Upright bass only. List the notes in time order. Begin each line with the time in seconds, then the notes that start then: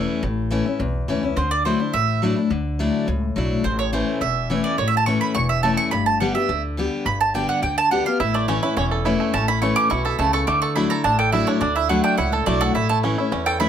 0.23 A1
0.79 B1
1.08 C#2
1.36 D2
1.94 A1
2.50 D2
3.07 C#2
3.36 B1
3.64 A1
4.21 E1
4.78 A1
5.35 E1
5.92 G1
6.49 D2
7.05 G1
7.62 D2
8.20 A1
8.76 E1
9.34 A1
9.91 B1
10.19 C#2
10.47 D2
11.04 A1
11.61 D2
12.18 C#2
12.46 B1
12.75 A1
13.32 E2